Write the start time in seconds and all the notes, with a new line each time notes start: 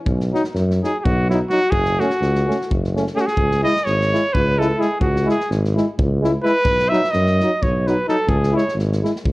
0.06 B1, kick
0.20 snare
0.33 F#3 D#4, snare
0.44 snare
0.55 F#2, snare
0.71 snare
0.81 F#3 D#4 G#4, snare
1.00 G#4
1.04 B1 F#4, kick
1.29 F#3 D#4 E4, snare
1.50 F#3 D#4 F#4, snare
1.71 F#1 G#4, kick
1.85 snare
1.98 A3 C#4 F#4, snare
2.10 snare
2.21 C#2, snare
2.35 snare
2.47 A3 C#4, snare
2.61 snare
2.70 F#1, kick
2.84 snare
2.95 A3 C#4, snare
3.07 snare
3.15 A3 C#4 G#4, snare
3.21 F#4
3.26 G#4, snare
3.37 C#2, kick
3.51 snare
3.63 G#3 E4 D#5, snare
3.76 snare
3.85 G#1 C#5, snare
4.01 snare
4.12 G#3 E4, snare
4.33 C#2 B4, kick
4.58 G#3 E4 A4, snare
4.77 G#3 E4 G#4
4.82 snare
5.01 C#2 F#4, kick
5.16 snare
5.24 G#3 E4
5.29 G#4, snare
5.41 snare
5.50 G#1, snare
5.65 snare
5.76 G#3 E4, snare
5.99 C#2, kick
6.21 G#3 E4, snare
6.43 G#3 E4 B4, snare
6.65 B1, kick
6.79 snare
6.89 F#3 D#4 E5
6.93 snare
7.04 snare
7.11 F#2 D#5, snare
7.26 snare
7.40 F#3 D#4, snare
7.62 B1 C#5, kick
7.87 F#3 D#4 B4, snare
8.08 F#3 D#4 A4, snare
8.27 C#2 G#4, kick
8.43 snare
8.53 G#3 E4 C#5
8.58 snare
8.69 snare
8.75 G#1
8.79 snare
8.92 snare
9.02 G#3 E4, snare
9.16 snare
9.24 C#2, kick